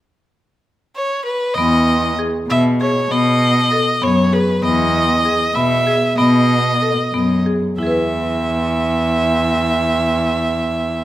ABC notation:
X:1
M:5/8
L:1/8
Q:1/4=97
K:E
V:1 name="Violin"
z3 c B | d2 z e c | d3 c B | d3 e2 |
d4 z | e4- e- | e4- e |]
V:2 name="Marimba"
z4 z | B,2 G B, G | B,2 A B, G | B,2 G B, G |
B,2 A B, G | [EGBe]4- [EGBe]- | [EGBe]4- [EGBe] |]
V:3 name="Cello" clef=bass
z4 z | E,,3 B,,2 | B,,3 F,,2 | E,,3 B,,2 |
B,,3 F,,2 | E,,4- E,,- | E,,4- E,, |]